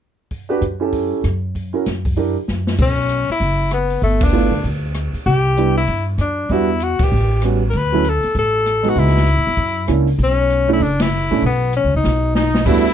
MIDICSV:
0, 0, Header, 1, 7, 480
1, 0, Start_track
1, 0, Key_signature, 2, "minor"
1, 0, Tempo, 308642
1, 495, Time_signature, 4, 2, 24, 8
1, 20120, End_track
2, 0, Start_track
2, 0, Title_t, "Tenor saxophone"
2, 0, Program_c, 0, 66
2, 4386, Note_on_c, 0, 61, 99
2, 5085, Note_off_c, 0, 61, 0
2, 5158, Note_on_c, 0, 64, 99
2, 5754, Note_off_c, 0, 64, 0
2, 5809, Note_on_c, 0, 59, 79
2, 6240, Note_off_c, 0, 59, 0
2, 6273, Note_on_c, 0, 57, 86
2, 6589, Note_on_c, 0, 62, 74
2, 6612, Note_off_c, 0, 57, 0
2, 7234, Note_off_c, 0, 62, 0
2, 8184, Note_on_c, 0, 67, 108
2, 8901, Note_off_c, 0, 67, 0
2, 8977, Note_on_c, 0, 64, 88
2, 9411, Note_off_c, 0, 64, 0
2, 9655, Note_on_c, 0, 62, 78
2, 10142, Note_on_c, 0, 64, 87
2, 10165, Note_off_c, 0, 62, 0
2, 10627, Note_on_c, 0, 66, 80
2, 10650, Note_off_c, 0, 64, 0
2, 10938, Note_on_c, 0, 67, 79
2, 10961, Note_off_c, 0, 66, 0
2, 11567, Note_off_c, 0, 67, 0
2, 11973, Note_on_c, 0, 70, 65
2, 12079, Note_on_c, 0, 71, 99
2, 12102, Note_off_c, 0, 70, 0
2, 12583, Note_on_c, 0, 69, 91
2, 12606, Note_off_c, 0, 71, 0
2, 13017, Note_off_c, 0, 69, 0
2, 13043, Note_on_c, 0, 69, 103
2, 13831, Note_on_c, 0, 66, 92
2, 13854, Note_off_c, 0, 69, 0
2, 13978, Note_on_c, 0, 64, 105
2, 14001, Note_off_c, 0, 66, 0
2, 15691, Note_off_c, 0, 64, 0
2, 15919, Note_on_c, 0, 61, 94
2, 16609, Note_off_c, 0, 61, 0
2, 16685, Note_on_c, 0, 64, 77
2, 16832, Note_on_c, 0, 62, 88
2, 16855, Note_off_c, 0, 64, 0
2, 17134, Note_on_c, 0, 64, 86
2, 17157, Note_off_c, 0, 62, 0
2, 17784, Note_off_c, 0, 64, 0
2, 17825, Note_on_c, 0, 59, 88
2, 18246, Note_off_c, 0, 59, 0
2, 18295, Note_on_c, 0, 61, 77
2, 18550, Note_off_c, 0, 61, 0
2, 18602, Note_on_c, 0, 63, 70
2, 19194, Note_off_c, 0, 63, 0
2, 19224, Note_on_c, 0, 63, 77
2, 19684, Note_on_c, 0, 64, 96
2, 19707, Note_off_c, 0, 63, 0
2, 20120, Note_off_c, 0, 64, 0
2, 20120, End_track
3, 0, Start_track
3, 0, Title_t, "Trumpet"
3, 0, Program_c, 1, 56
3, 19208, Note_on_c, 1, 63, 71
3, 19672, Note_on_c, 1, 64, 75
3, 19696, Note_off_c, 1, 63, 0
3, 20120, Note_off_c, 1, 64, 0
3, 20120, End_track
4, 0, Start_track
4, 0, Title_t, "Grand piano"
4, 0, Program_c, 2, 0
4, 761, Note_on_c, 2, 62, 64
4, 772, Note_on_c, 2, 66, 61
4, 777, Note_on_c, 2, 67, 61
4, 790, Note_on_c, 2, 71, 74
4, 942, Note_off_c, 2, 62, 0
4, 947, Note_off_c, 2, 66, 0
4, 950, Note_off_c, 2, 67, 0
4, 956, Note_off_c, 2, 71, 0
4, 1241, Note_on_c, 2, 61, 56
4, 1255, Note_on_c, 2, 64, 50
4, 1273, Note_on_c, 2, 67, 50
4, 1278, Note_on_c, 2, 69, 64
4, 1884, Note_off_c, 2, 61, 0
4, 1891, Note_off_c, 2, 64, 0
4, 1900, Note_off_c, 2, 67, 0
4, 1902, Note_off_c, 2, 69, 0
4, 2689, Note_on_c, 2, 61, 53
4, 2702, Note_on_c, 2, 64, 48
4, 2714, Note_on_c, 2, 66, 49
4, 2721, Note_on_c, 2, 70, 59
4, 2867, Note_off_c, 2, 61, 0
4, 2873, Note_off_c, 2, 64, 0
4, 2879, Note_off_c, 2, 66, 0
4, 2882, Note_off_c, 2, 70, 0
4, 3368, Note_on_c, 2, 62, 55
4, 3377, Note_on_c, 2, 64, 50
4, 3390, Note_on_c, 2, 67, 47
4, 3393, Note_on_c, 2, 70, 56
4, 3639, Note_off_c, 2, 62, 0
4, 3643, Note_off_c, 2, 64, 0
4, 3650, Note_off_c, 2, 67, 0
4, 3651, Note_off_c, 2, 70, 0
4, 6721, Note_on_c, 2, 57, 58
4, 6730, Note_on_c, 2, 59, 56
4, 6735, Note_on_c, 2, 64, 55
4, 6751, Note_on_c, 2, 65, 58
4, 6995, Note_off_c, 2, 57, 0
4, 6999, Note_off_c, 2, 59, 0
4, 7002, Note_off_c, 2, 64, 0
4, 7010, Note_off_c, 2, 65, 0
4, 8661, Note_on_c, 2, 55, 55
4, 8670, Note_on_c, 2, 59, 53
4, 8678, Note_on_c, 2, 62, 51
4, 8687, Note_on_c, 2, 64, 61
4, 8924, Note_off_c, 2, 55, 0
4, 8929, Note_off_c, 2, 59, 0
4, 8933, Note_off_c, 2, 62, 0
4, 8937, Note_off_c, 2, 64, 0
4, 10106, Note_on_c, 2, 55, 67
4, 10123, Note_on_c, 2, 59, 58
4, 10123, Note_on_c, 2, 62, 62
4, 10142, Note_on_c, 2, 66, 78
4, 10366, Note_off_c, 2, 55, 0
4, 10375, Note_off_c, 2, 59, 0
4, 10375, Note_off_c, 2, 62, 0
4, 10384, Note_off_c, 2, 66, 0
4, 11537, Note_on_c, 2, 55, 52
4, 11554, Note_on_c, 2, 59, 48
4, 11558, Note_on_c, 2, 61, 50
4, 11577, Note_on_c, 2, 66, 58
4, 11801, Note_off_c, 2, 55, 0
4, 11810, Note_off_c, 2, 59, 0
4, 11812, Note_off_c, 2, 61, 0
4, 11822, Note_off_c, 2, 66, 0
4, 12321, Note_on_c, 2, 54, 60
4, 12333, Note_on_c, 2, 57, 57
4, 12342, Note_on_c, 2, 61, 55
4, 12355, Note_on_c, 2, 64, 69
4, 12480, Note_off_c, 2, 54, 0
4, 12486, Note_off_c, 2, 57, 0
4, 12491, Note_off_c, 2, 61, 0
4, 12497, Note_off_c, 2, 64, 0
4, 13735, Note_on_c, 2, 56, 61
4, 13754, Note_on_c, 2, 59, 57
4, 13756, Note_on_c, 2, 63, 56
4, 13770, Note_on_c, 2, 66, 68
4, 14369, Note_off_c, 2, 56, 0
4, 14378, Note_off_c, 2, 59, 0
4, 14379, Note_off_c, 2, 63, 0
4, 14386, Note_off_c, 2, 66, 0
4, 15355, Note_on_c, 2, 61, 53
4, 15358, Note_on_c, 2, 58, 55
4, 15372, Note_on_c, 2, 62, 49
4, 15381, Note_on_c, 2, 64, 61
4, 15630, Note_off_c, 2, 61, 0
4, 15632, Note_off_c, 2, 58, 0
4, 15638, Note_off_c, 2, 62, 0
4, 15643, Note_off_c, 2, 64, 0
4, 16612, Note_on_c, 2, 57, 73
4, 16617, Note_on_c, 2, 61, 66
4, 16623, Note_on_c, 2, 62, 66
4, 16632, Note_on_c, 2, 64, 79
4, 16786, Note_off_c, 2, 57, 0
4, 16788, Note_off_c, 2, 61, 0
4, 16791, Note_off_c, 2, 62, 0
4, 16795, Note_off_c, 2, 64, 0
4, 17586, Note_on_c, 2, 57, 67
4, 17595, Note_on_c, 2, 61, 58
4, 17601, Note_on_c, 2, 62, 56
4, 17611, Note_on_c, 2, 64, 64
4, 17752, Note_off_c, 2, 57, 0
4, 17757, Note_off_c, 2, 61, 0
4, 17760, Note_off_c, 2, 62, 0
4, 17765, Note_off_c, 2, 64, 0
4, 19688, Note_on_c, 2, 57, 65
4, 19691, Note_on_c, 2, 55, 71
4, 19698, Note_on_c, 2, 59, 68
4, 19709, Note_on_c, 2, 62, 69
4, 19720, Note_on_c, 2, 66, 81
4, 19956, Note_off_c, 2, 57, 0
4, 19957, Note_off_c, 2, 55, 0
4, 19961, Note_off_c, 2, 59, 0
4, 19966, Note_off_c, 2, 62, 0
4, 19972, Note_off_c, 2, 66, 0
4, 20120, End_track
5, 0, Start_track
5, 0, Title_t, "Upright bass"
5, 0, Program_c, 3, 32
5, 952, Note_on_c, 3, 42, 70
5, 1720, Note_off_c, 3, 42, 0
5, 1926, Note_on_c, 3, 42, 74
5, 2687, Note_off_c, 3, 42, 0
5, 2900, Note_on_c, 3, 42, 70
5, 3655, Note_off_c, 3, 42, 0
5, 3865, Note_on_c, 3, 42, 72
5, 4308, Note_off_c, 3, 42, 0
5, 4334, Note_on_c, 3, 35, 79
5, 5057, Note_off_c, 3, 35, 0
5, 5289, Note_on_c, 3, 30, 76
5, 6204, Note_off_c, 3, 30, 0
5, 6252, Note_on_c, 3, 31, 81
5, 6975, Note_off_c, 3, 31, 0
5, 7026, Note_on_c, 3, 38, 67
5, 7199, Note_off_c, 3, 38, 0
5, 7216, Note_on_c, 3, 38, 72
5, 7937, Note_off_c, 3, 38, 0
5, 8181, Note_on_c, 3, 36, 86
5, 9089, Note_off_c, 3, 36, 0
5, 9144, Note_on_c, 3, 43, 79
5, 9586, Note_off_c, 3, 43, 0
5, 9609, Note_on_c, 3, 42, 73
5, 10057, Note_off_c, 3, 42, 0
5, 10096, Note_on_c, 3, 40, 80
5, 10816, Note_off_c, 3, 40, 0
5, 11071, Note_on_c, 3, 33, 76
5, 11974, Note_off_c, 3, 33, 0
5, 12028, Note_on_c, 3, 38, 78
5, 12743, Note_off_c, 3, 38, 0
5, 12985, Note_on_c, 3, 33, 80
5, 13891, Note_off_c, 3, 33, 0
5, 13933, Note_on_c, 3, 37, 82
5, 14528, Note_off_c, 3, 37, 0
5, 14576, Note_on_c, 3, 39, 62
5, 14718, Note_off_c, 3, 39, 0
5, 14728, Note_on_c, 3, 40, 67
5, 14878, Note_off_c, 3, 40, 0
5, 14885, Note_on_c, 3, 42, 81
5, 15335, Note_off_c, 3, 42, 0
5, 15369, Note_on_c, 3, 37, 70
5, 15817, Note_off_c, 3, 37, 0
5, 15840, Note_on_c, 3, 35, 83
5, 16758, Note_off_c, 3, 35, 0
5, 16801, Note_on_c, 3, 30, 77
5, 17528, Note_off_c, 3, 30, 0
5, 17589, Note_on_c, 3, 33, 66
5, 17759, Note_off_c, 3, 33, 0
5, 17768, Note_on_c, 3, 35, 80
5, 18364, Note_off_c, 3, 35, 0
5, 18415, Note_on_c, 3, 37, 63
5, 18562, Note_off_c, 3, 37, 0
5, 18577, Note_on_c, 3, 36, 63
5, 18723, Note_off_c, 3, 36, 0
5, 18744, Note_on_c, 3, 35, 75
5, 19649, Note_off_c, 3, 35, 0
5, 19689, Note_on_c, 3, 40, 76
5, 20120, Note_off_c, 3, 40, 0
5, 20120, End_track
6, 0, Start_track
6, 0, Title_t, "Muted upright bass strokes"
6, 5120, Note_on_c, 9, 29, 35
6, 5276, Note_off_c, 9, 29, 0
6, 7983, Note_on_c, 9, 29, 38
6, 8138, Note_off_c, 9, 29, 0
6, 10881, Note_on_c, 9, 29, 38
6, 11036, Note_off_c, 9, 29, 0
6, 12803, Note_on_c, 9, 29, 37
6, 12958, Note_off_c, 9, 29, 0
6, 20120, End_track
7, 0, Start_track
7, 0, Title_t, "Drums"
7, 477, Note_on_c, 9, 46, 31
7, 483, Note_on_c, 9, 36, 28
7, 633, Note_off_c, 9, 46, 0
7, 638, Note_off_c, 9, 36, 0
7, 959, Note_on_c, 9, 42, 42
7, 1115, Note_off_c, 9, 42, 0
7, 1439, Note_on_c, 9, 46, 38
7, 1444, Note_on_c, 9, 36, 30
7, 1594, Note_off_c, 9, 46, 0
7, 1599, Note_off_c, 9, 36, 0
7, 1926, Note_on_c, 9, 42, 45
7, 1931, Note_on_c, 9, 37, 55
7, 2082, Note_off_c, 9, 42, 0
7, 2086, Note_off_c, 9, 37, 0
7, 2413, Note_on_c, 9, 36, 27
7, 2418, Note_on_c, 9, 46, 36
7, 2569, Note_off_c, 9, 36, 0
7, 2573, Note_off_c, 9, 46, 0
7, 2893, Note_on_c, 9, 42, 50
7, 2897, Note_on_c, 9, 38, 36
7, 3048, Note_off_c, 9, 42, 0
7, 3053, Note_off_c, 9, 38, 0
7, 3190, Note_on_c, 9, 36, 45
7, 3196, Note_on_c, 9, 46, 35
7, 3345, Note_off_c, 9, 36, 0
7, 3351, Note_off_c, 9, 46, 0
7, 3374, Note_on_c, 9, 46, 37
7, 3375, Note_on_c, 9, 36, 30
7, 3529, Note_off_c, 9, 46, 0
7, 3530, Note_off_c, 9, 36, 0
7, 3856, Note_on_c, 9, 38, 36
7, 4011, Note_off_c, 9, 38, 0
7, 4153, Note_on_c, 9, 38, 52
7, 4309, Note_off_c, 9, 38, 0
7, 4329, Note_on_c, 9, 49, 62
7, 4335, Note_on_c, 9, 36, 59
7, 4485, Note_off_c, 9, 49, 0
7, 4491, Note_off_c, 9, 36, 0
7, 4807, Note_on_c, 9, 42, 51
7, 4962, Note_off_c, 9, 42, 0
7, 5106, Note_on_c, 9, 46, 37
7, 5262, Note_off_c, 9, 46, 0
7, 5285, Note_on_c, 9, 46, 41
7, 5294, Note_on_c, 9, 36, 31
7, 5441, Note_off_c, 9, 46, 0
7, 5449, Note_off_c, 9, 36, 0
7, 5767, Note_on_c, 9, 42, 52
7, 5772, Note_on_c, 9, 37, 59
7, 5923, Note_off_c, 9, 42, 0
7, 5927, Note_off_c, 9, 37, 0
7, 6067, Note_on_c, 9, 46, 40
7, 6222, Note_off_c, 9, 46, 0
7, 6252, Note_on_c, 9, 36, 29
7, 6253, Note_on_c, 9, 46, 42
7, 6407, Note_off_c, 9, 36, 0
7, 6408, Note_off_c, 9, 46, 0
7, 6541, Note_on_c, 9, 51, 77
7, 6550, Note_on_c, 9, 36, 81
7, 6697, Note_off_c, 9, 51, 0
7, 6705, Note_off_c, 9, 36, 0
7, 7215, Note_on_c, 9, 36, 33
7, 7216, Note_on_c, 9, 46, 43
7, 7371, Note_off_c, 9, 36, 0
7, 7371, Note_off_c, 9, 46, 0
7, 7687, Note_on_c, 9, 42, 54
7, 7692, Note_on_c, 9, 37, 61
7, 7843, Note_off_c, 9, 42, 0
7, 7847, Note_off_c, 9, 37, 0
7, 7995, Note_on_c, 9, 46, 40
7, 8150, Note_off_c, 9, 46, 0
7, 8180, Note_on_c, 9, 36, 30
7, 8192, Note_on_c, 9, 46, 40
7, 8335, Note_off_c, 9, 36, 0
7, 8347, Note_off_c, 9, 46, 0
7, 8661, Note_on_c, 9, 42, 52
7, 8816, Note_off_c, 9, 42, 0
7, 9137, Note_on_c, 9, 46, 43
7, 9139, Note_on_c, 9, 36, 32
7, 9292, Note_off_c, 9, 46, 0
7, 9294, Note_off_c, 9, 36, 0
7, 9611, Note_on_c, 9, 42, 47
7, 9616, Note_on_c, 9, 37, 54
7, 9767, Note_off_c, 9, 42, 0
7, 9771, Note_off_c, 9, 37, 0
7, 10102, Note_on_c, 9, 36, 31
7, 10102, Note_on_c, 9, 46, 38
7, 10257, Note_off_c, 9, 46, 0
7, 10258, Note_off_c, 9, 36, 0
7, 10576, Note_on_c, 9, 42, 50
7, 10731, Note_off_c, 9, 42, 0
7, 10871, Note_on_c, 9, 51, 70
7, 10879, Note_on_c, 9, 36, 80
7, 11027, Note_off_c, 9, 51, 0
7, 11035, Note_off_c, 9, 36, 0
7, 11533, Note_on_c, 9, 42, 50
7, 11537, Note_on_c, 9, 37, 60
7, 11688, Note_off_c, 9, 42, 0
7, 11693, Note_off_c, 9, 37, 0
7, 12022, Note_on_c, 9, 36, 29
7, 12024, Note_on_c, 9, 46, 39
7, 12178, Note_off_c, 9, 36, 0
7, 12179, Note_off_c, 9, 46, 0
7, 12507, Note_on_c, 9, 42, 51
7, 12663, Note_off_c, 9, 42, 0
7, 12797, Note_on_c, 9, 46, 38
7, 12952, Note_off_c, 9, 46, 0
7, 12982, Note_on_c, 9, 36, 31
7, 12982, Note_on_c, 9, 46, 42
7, 13137, Note_off_c, 9, 36, 0
7, 13137, Note_off_c, 9, 46, 0
7, 13466, Note_on_c, 9, 42, 50
7, 13471, Note_on_c, 9, 37, 57
7, 13622, Note_off_c, 9, 42, 0
7, 13626, Note_off_c, 9, 37, 0
7, 13752, Note_on_c, 9, 46, 41
7, 13908, Note_off_c, 9, 46, 0
7, 13934, Note_on_c, 9, 36, 31
7, 13941, Note_on_c, 9, 46, 40
7, 14090, Note_off_c, 9, 36, 0
7, 14096, Note_off_c, 9, 46, 0
7, 14108, Note_on_c, 9, 38, 28
7, 14258, Note_off_c, 9, 38, 0
7, 14258, Note_on_c, 9, 38, 43
7, 14409, Note_on_c, 9, 42, 53
7, 14413, Note_off_c, 9, 38, 0
7, 14565, Note_off_c, 9, 42, 0
7, 14878, Note_on_c, 9, 46, 43
7, 14884, Note_on_c, 9, 36, 31
7, 15033, Note_off_c, 9, 46, 0
7, 15039, Note_off_c, 9, 36, 0
7, 15361, Note_on_c, 9, 42, 55
7, 15366, Note_on_c, 9, 37, 55
7, 15517, Note_off_c, 9, 42, 0
7, 15521, Note_off_c, 9, 37, 0
7, 15663, Note_on_c, 9, 46, 37
7, 15819, Note_off_c, 9, 46, 0
7, 15841, Note_on_c, 9, 36, 31
7, 15848, Note_on_c, 9, 46, 44
7, 15997, Note_off_c, 9, 36, 0
7, 16003, Note_off_c, 9, 46, 0
7, 16330, Note_on_c, 9, 42, 55
7, 16486, Note_off_c, 9, 42, 0
7, 16801, Note_on_c, 9, 36, 33
7, 16801, Note_on_c, 9, 46, 46
7, 16957, Note_off_c, 9, 36, 0
7, 16957, Note_off_c, 9, 46, 0
7, 17100, Note_on_c, 9, 51, 63
7, 17105, Note_on_c, 9, 38, 74
7, 17256, Note_off_c, 9, 51, 0
7, 17261, Note_off_c, 9, 38, 0
7, 17757, Note_on_c, 9, 46, 40
7, 17764, Note_on_c, 9, 36, 32
7, 17912, Note_off_c, 9, 46, 0
7, 17919, Note_off_c, 9, 36, 0
7, 18240, Note_on_c, 9, 42, 53
7, 18395, Note_off_c, 9, 42, 0
7, 18722, Note_on_c, 9, 38, 45
7, 18878, Note_off_c, 9, 38, 0
7, 19209, Note_on_c, 9, 38, 68
7, 19364, Note_off_c, 9, 38, 0
7, 19508, Note_on_c, 9, 38, 74
7, 19663, Note_off_c, 9, 38, 0
7, 19684, Note_on_c, 9, 49, 70
7, 19686, Note_on_c, 9, 36, 66
7, 19840, Note_off_c, 9, 49, 0
7, 19841, Note_off_c, 9, 36, 0
7, 20120, End_track
0, 0, End_of_file